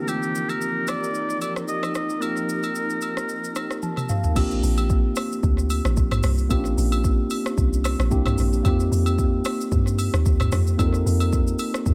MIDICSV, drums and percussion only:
0, 0, Header, 1, 2, 480
1, 0, Start_track
1, 0, Key_signature, -2, "major"
1, 0, Tempo, 535714
1, 67, Time_signature, 4, 2, 24, 8
1, 10699, End_track
2, 0, Start_track
2, 0, Title_t, "Drums"
2, 71, Note_on_c, 9, 67, 70
2, 71, Note_on_c, 9, 82, 73
2, 160, Note_off_c, 9, 67, 0
2, 161, Note_off_c, 9, 82, 0
2, 204, Note_on_c, 9, 82, 47
2, 293, Note_off_c, 9, 82, 0
2, 317, Note_on_c, 9, 82, 86
2, 406, Note_off_c, 9, 82, 0
2, 442, Note_on_c, 9, 67, 73
2, 442, Note_on_c, 9, 82, 47
2, 532, Note_off_c, 9, 67, 0
2, 532, Note_off_c, 9, 82, 0
2, 551, Note_on_c, 9, 82, 72
2, 640, Note_off_c, 9, 82, 0
2, 783, Note_on_c, 9, 82, 81
2, 788, Note_on_c, 9, 67, 70
2, 793, Note_on_c, 9, 37, 92
2, 873, Note_off_c, 9, 82, 0
2, 877, Note_off_c, 9, 67, 0
2, 882, Note_off_c, 9, 37, 0
2, 929, Note_on_c, 9, 82, 64
2, 1018, Note_off_c, 9, 82, 0
2, 1026, Note_on_c, 9, 82, 58
2, 1116, Note_off_c, 9, 82, 0
2, 1163, Note_on_c, 9, 82, 55
2, 1253, Note_off_c, 9, 82, 0
2, 1268, Note_on_c, 9, 67, 68
2, 1268, Note_on_c, 9, 82, 91
2, 1357, Note_off_c, 9, 82, 0
2, 1358, Note_off_c, 9, 67, 0
2, 1401, Note_on_c, 9, 37, 93
2, 1406, Note_on_c, 9, 82, 47
2, 1490, Note_off_c, 9, 37, 0
2, 1495, Note_off_c, 9, 82, 0
2, 1506, Note_on_c, 9, 82, 69
2, 1596, Note_off_c, 9, 82, 0
2, 1638, Note_on_c, 9, 67, 65
2, 1641, Note_on_c, 9, 37, 83
2, 1647, Note_on_c, 9, 82, 49
2, 1728, Note_off_c, 9, 67, 0
2, 1730, Note_off_c, 9, 37, 0
2, 1737, Note_off_c, 9, 82, 0
2, 1745, Note_on_c, 9, 82, 84
2, 1749, Note_on_c, 9, 37, 96
2, 1835, Note_off_c, 9, 82, 0
2, 1839, Note_off_c, 9, 37, 0
2, 1877, Note_on_c, 9, 82, 48
2, 1967, Note_off_c, 9, 82, 0
2, 1988, Note_on_c, 9, 82, 75
2, 1990, Note_on_c, 9, 67, 75
2, 2078, Note_off_c, 9, 82, 0
2, 2079, Note_off_c, 9, 67, 0
2, 2120, Note_on_c, 9, 82, 47
2, 2210, Note_off_c, 9, 82, 0
2, 2234, Note_on_c, 9, 82, 86
2, 2323, Note_off_c, 9, 82, 0
2, 2358, Note_on_c, 9, 82, 48
2, 2362, Note_on_c, 9, 67, 71
2, 2448, Note_off_c, 9, 82, 0
2, 2452, Note_off_c, 9, 67, 0
2, 2467, Note_on_c, 9, 82, 74
2, 2556, Note_off_c, 9, 82, 0
2, 2598, Note_on_c, 9, 82, 55
2, 2687, Note_off_c, 9, 82, 0
2, 2701, Note_on_c, 9, 82, 82
2, 2710, Note_on_c, 9, 67, 68
2, 2790, Note_off_c, 9, 82, 0
2, 2799, Note_off_c, 9, 67, 0
2, 2840, Note_on_c, 9, 37, 93
2, 2847, Note_on_c, 9, 82, 62
2, 2930, Note_off_c, 9, 37, 0
2, 2936, Note_off_c, 9, 82, 0
2, 2946, Note_on_c, 9, 82, 61
2, 3036, Note_off_c, 9, 82, 0
2, 3084, Note_on_c, 9, 82, 58
2, 3173, Note_off_c, 9, 82, 0
2, 3186, Note_on_c, 9, 82, 93
2, 3189, Note_on_c, 9, 67, 70
2, 3190, Note_on_c, 9, 37, 89
2, 3275, Note_off_c, 9, 82, 0
2, 3278, Note_off_c, 9, 67, 0
2, 3280, Note_off_c, 9, 37, 0
2, 3320, Note_on_c, 9, 37, 91
2, 3326, Note_on_c, 9, 82, 47
2, 3410, Note_off_c, 9, 37, 0
2, 3415, Note_off_c, 9, 82, 0
2, 3427, Note_on_c, 9, 82, 68
2, 3429, Note_on_c, 9, 48, 55
2, 3517, Note_off_c, 9, 82, 0
2, 3519, Note_off_c, 9, 48, 0
2, 3558, Note_on_c, 9, 67, 62
2, 3560, Note_on_c, 9, 47, 57
2, 3567, Note_on_c, 9, 82, 51
2, 3648, Note_off_c, 9, 67, 0
2, 3650, Note_off_c, 9, 47, 0
2, 3657, Note_off_c, 9, 82, 0
2, 3665, Note_on_c, 9, 82, 87
2, 3669, Note_on_c, 9, 45, 82
2, 3755, Note_off_c, 9, 82, 0
2, 3758, Note_off_c, 9, 45, 0
2, 3797, Note_on_c, 9, 82, 49
2, 3799, Note_on_c, 9, 43, 81
2, 3886, Note_off_c, 9, 82, 0
2, 3889, Note_off_c, 9, 43, 0
2, 3908, Note_on_c, 9, 36, 116
2, 3908, Note_on_c, 9, 49, 102
2, 3909, Note_on_c, 9, 67, 80
2, 3909, Note_on_c, 9, 82, 81
2, 3997, Note_off_c, 9, 36, 0
2, 3998, Note_off_c, 9, 49, 0
2, 3999, Note_off_c, 9, 67, 0
2, 3999, Note_off_c, 9, 82, 0
2, 4039, Note_on_c, 9, 82, 52
2, 4129, Note_off_c, 9, 82, 0
2, 4153, Note_on_c, 9, 46, 54
2, 4153, Note_on_c, 9, 82, 95
2, 4243, Note_off_c, 9, 46, 0
2, 4243, Note_off_c, 9, 82, 0
2, 4277, Note_on_c, 9, 82, 53
2, 4280, Note_on_c, 9, 67, 79
2, 4367, Note_off_c, 9, 82, 0
2, 4370, Note_off_c, 9, 67, 0
2, 4389, Note_on_c, 9, 36, 107
2, 4389, Note_on_c, 9, 82, 80
2, 4478, Note_off_c, 9, 82, 0
2, 4479, Note_off_c, 9, 36, 0
2, 4622, Note_on_c, 9, 46, 53
2, 4622, Note_on_c, 9, 82, 90
2, 4630, Note_on_c, 9, 67, 75
2, 4632, Note_on_c, 9, 37, 101
2, 4712, Note_off_c, 9, 46, 0
2, 4712, Note_off_c, 9, 82, 0
2, 4719, Note_off_c, 9, 67, 0
2, 4721, Note_off_c, 9, 37, 0
2, 4770, Note_on_c, 9, 82, 65
2, 4859, Note_off_c, 9, 82, 0
2, 4868, Note_on_c, 9, 36, 118
2, 4868, Note_on_c, 9, 82, 64
2, 4957, Note_off_c, 9, 82, 0
2, 4958, Note_off_c, 9, 36, 0
2, 5005, Note_on_c, 9, 82, 63
2, 5095, Note_off_c, 9, 82, 0
2, 5108, Note_on_c, 9, 46, 61
2, 5108, Note_on_c, 9, 82, 98
2, 5109, Note_on_c, 9, 67, 75
2, 5198, Note_off_c, 9, 46, 0
2, 5198, Note_off_c, 9, 82, 0
2, 5199, Note_off_c, 9, 67, 0
2, 5242, Note_on_c, 9, 37, 101
2, 5248, Note_on_c, 9, 82, 52
2, 5332, Note_off_c, 9, 37, 0
2, 5337, Note_off_c, 9, 82, 0
2, 5347, Note_on_c, 9, 82, 78
2, 5350, Note_on_c, 9, 36, 102
2, 5437, Note_off_c, 9, 82, 0
2, 5440, Note_off_c, 9, 36, 0
2, 5478, Note_on_c, 9, 45, 92
2, 5478, Note_on_c, 9, 67, 73
2, 5481, Note_on_c, 9, 37, 93
2, 5488, Note_on_c, 9, 82, 53
2, 5567, Note_off_c, 9, 67, 0
2, 5568, Note_off_c, 9, 45, 0
2, 5571, Note_off_c, 9, 37, 0
2, 5578, Note_off_c, 9, 82, 0
2, 5584, Note_on_c, 9, 46, 55
2, 5584, Note_on_c, 9, 82, 94
2, 5588, Note_on_c, 9, 37, 105
2, 5673, Note_off_c, 9, 46, 0
2, 5673, Note_off_c, 9, 82, 0
2, 5678, Note_off_c, 9, 37, 0
2, 5716, Note_on_c, 9, 82, 56
2, 5806, Note_off_c, 9, 82, 0
2, 5828, Note_on_c, 9, 36, 112
2, 5829, Note_on_c, 9, 67, 78
2, 5829, Note_on_c, 9, 82, 85
2, 5918, Note_off_c, 9, 36, 0
2, 5918, Note_off_c, 9, 82, 0
2, 5919, Note_off_c, 9, 67, 0
2, 5962, Note_on_c, 9, 82, 54
2, 6051, Note_off_c, 9, 82, 0
2, 6076, Note_on_c, 9, 46, 57
2, 6076, Note_on_c, 9, 82, 97
2, 6165, Note_off_c, 9, 46, 0
2, 6165, Note_off_c, 9, 82, 0
2, 6200, Note_on_c, 9, 82, 52
2, 6202, Note_on_c, 9, 67, 83
2, 6289, Note_off_c, 9, 82, 0
2, 6291, Note_off_c, 9, 67, 0
2, 6310, Note_on_c, 9, 36, 105
2, 6310, Note_on_c, 9, 82, 80
2, 6400, Note_off_c, 9, 36, 0
2, 6400, Note_off_c, 9, 82, 0
2, 6543, Note_on_c, 9, 46, 53
2, 6543, Note_on_c, 9, 82, 85
2, 6548, Note_on_c, 9, 67, 77
2, 6633, Note_off_c, 9, 46, 0
2, 6633, Note_off_c, 9, 82, 0
2, 6638, Note_off_c, 9, 67, 0
2, 6684, Note_on_c, 9, 37, 97
2, 6690, Note_on_c, 9, 82, 66
2, 6773, Note_off_c, 9, 37, 0
2, 6780, Note_off_c, 9, 82, 0
2, 6788, Note_on_c, 9, 36, 117
2, 6789, Note_on_c, 9, 82, 65
2, 6878, Note_off_c, 9, 36, 0
2, 6878, Note_off_c, 9, 82, 0
2, 6928, Note_on_c, 9, 82, 64
2, 7017, Note_off_c, 9, 82, 0
2, 7027, Note_on_c, 9, 67, 76
2, 7031, Note_on_c, 9, 46, 59
2, 7031, Note_on_c, 9, 82, 102
2, 7036, Note_on_c, 9, 37, 103
2, 7117, Note_off_c, 9, 67, 0
2, 7121, Note_off_c, 9, 46, 0
2, 7121, Note_off_c, 9, 82, 0
2, 7125, Note_off_c, 9, 37, 0
2, 7165, Note_on_c, 9, 37, 104
2, 7171, Note_on_c, 9, 82, 51
2, 7255, Note_off_c, 9, 37, 0
2, 7260, Note_off_c, 9, 82, 0
2, 7269, Note_on_c, 9, 82, 76
2, 7272, Note_on_c, 9, 36, 102
2, 7359, Note_off_c, 9, 82, 0
2, 7361, Note_off_c, 9, 36, 0
2, 7397, Note_on_c, 9, 67, 73
2, 7403, Note_on_c, 9, 45, 92
2, 7406, Note_on_c, 9, 37, 91
2, 7413, Note_on_c, 9, 82, 52
2, 7487, Note_off_c, 9, 67, 0
2, 7492, Note_off_c, 9, 45, 0
2, 7496, Note_off_c, 9, 37, 0
2, 7502, Note_off_c, 9, 82, 0
2, 7508, Note_on_c, 9, 46, 54
2, 7508, Note_on_c, 9, 82, 91
2, 7598, Note_off_c, 9, 46, 0
2, 7598, Note_off_c, 9, 82, 0
2, 7642, Note_on_c, 9, 82, 52
2, 7732, Note_off_c, 9, 82, 0
2, 7749, Note_on_c, 9, 67, 82
2, 7750, Note_on_c, 9, 36, 113
2, 7753, Note_on_c, 9, 82, 81
2, 7839, Note_off_c, 9, 36, 0
2, 7839, Note_off_c, 9, 67, 0
2, 7843, Note_off_c, 9, 82, 0
2, 7884, Note_on_c, 9, 82, 53
2, 7973, Note_off_c, 9, 82, 0
2, 7998, Note_on_c, 9, 46, 55
2, 7998, Note_on_c, 9, 82, 95
2, 8087, Note_off_c, 9, 46, 0
2, 8087, Note_off_c, 9, 82, 0
2, 8119, Note_on_c, 9, 67, 80
2, 8123, Note_on_c, 9, 82, 54
2, 8208, Note_off_c, 9, 67, 0
2, 8212, Note_off_c, 9, 82, 0
2, 8230, Note_on_c, 9, 36, 104
2, 8231, Note_on_c, 9, 82, 78
2, 8320, Note_off_c, 9, 36, 0
2, 8321, Note_off_c, 9, 82, 0
2, 8465, Note_on_c, 9, 46, 53
2, 8465, Note_on_c, 9, 82, 91
2, 8468, Note_on_c, 9, 67, 78
2, 8474, Note_on_c, 9, 37, 103
2, 8554, Note_off_c, 9, 46, 0
2, 8554, Note_off_c, 9, 82, 0
2, 8558, Note_off_c, 9, 67, 0
2, 8564, Note_off_c, 9, 37, 0
2, 8609, Note_on_c, 9, 82, 67
2, 8699, Note_off_c, 9, 82, 0
2, 8707, Note_on_c, 9, 36, 120
2, 8707, Note_on_c, 9, 82, 65
2, 8796, Note_off_c, 9, 82, 0
2, 8797, Note_off_c, 9, 36, 0
2, 8847, Note_on_c, 9, 82, 63
2, 8936, Note_off_c, 9, 82, 0
2, 8947, Note_on_c, 9, 67, 72
2, 8949, Note_on_c, 9, 46, 59
2, 8949, Note_on_c, 9, 82, 100
2, 9037, Note_off_c, 9, 67, 0
2, 9039, Note_off_c, 9, 46, 0
2, 9039, Note_off_c, 9, 82, 0
2, 9083, Note_on_c, 9, 37, 101
2, 9088, Note_on_c, 9, 82, 52
2, 9172, Note_off_c, 9, 37, 0
2, 9178, Note_off_c, 9, 82, 0
2, 9189, Note_on_c, 9, 82, 79
2, 9191, Note_on_c, 9, 36, 99
2, 9279, Note_off_c, 9, 82, 0
2, 9280, Note_off_c, 9, 36, 0
2, 9317, Note_on_c, 9, 67, 69
2, 9320, Note_on_c, 9, 45, 93
2, 9323, Note_on_c, 9, 37, 92
2, 9329, Note_on_c, 9, 82, 54
2, 9407, Note_off_c, 9, 67, 0
2, 9409, Note_off_c, 9, 45, 0
2, 9412, Note_off_c, 9, 37, 0
2, 9419, Note_off_c, 9, 82, 0
2, 9425, Note_on_c, 9, 46, 56
2, 9425, Note_on_c, 9, 82, 93
2, 9430, Note_on_c, 9, 37, 104
2, 9515, Note_off_c, 9, 46, 0
2, 9515, Note_off_c, 9, 82, 0
2, 9519, Note_off_c, 9, 37, 0
2, 9561, Note_on_c, 9, 82, 51
2, 9650, Note_off_c, 9, 82, 0
2, 9668, Note_on_c, 9, 67, 77
2, 9669, Note_on_c, 9, 36, 108
2, 9672, Note_on_c, 9, 82, 81
2, 9758, Note_off_c, 9, 67, 0
2, 9759, Note_off_c, 9, 36, 0
2, 9762, Note_off_c, 9, 82, 0
2, 9804, Note_on_c, 9, 82, 52
2, 9894, Note_off_c, 9, 82, 0
2, 9919, Note_on_c, 9, 46, 56
2, 9919, Note_on_c, 9, 82, 90
2, 10008, Note_off_c, 9, 46, 0
2, 10008, Note_off_c, 9, 82, 0
2, 10039, Note_on_c, 9, 67, 77
2, 10040, Note_on_c, 9, 82, 54
2, 10128, Note_off_c, 9, 67, 0
2, 10130, Note_off_c, 9, 82, 0
2, 10149, Note_on_c, 9, 82, 80
2, 10150, Note_on_c, 9, 36, 103
2, 10239, Note_off_c, 9, 36, 0
2, 10239, Note_off_c, 9, 82, 0
2, 10280, Note_on_c, 9, 82, 57
2, 10369, Note_off_c, 9, 82, 0
2, 10384, Note_on_c, 9, 46, 53
2, 10384, Note_on_c, 9, 82, 88
2, 10388, Note_on_c, 9, 67, 76
2, 10474, Note_off_c, 9, 46, 0
2, 10474, Note_off_c, 9, 82, 0
2, 10477, Note_off_c, 9, 67, 0
2, 10521, Note_on_c, 9, 37, 100
2, 10528, Note_on_c, 9, 82, 67
2, 10611, Note_off_c, 9, 37, 0
2, 10617, Note_off_c, 9, 82, 0
2, 10627, Note_on_c, 9, 36, 123
2, 10627, Note_on_c, 9, 82, 64
2, 10699, Note_off_c, 9, 36, 0
2, 10699, Note_off_c, 9, 82, 0
2, 10699, End_track
0, 0, End_of_file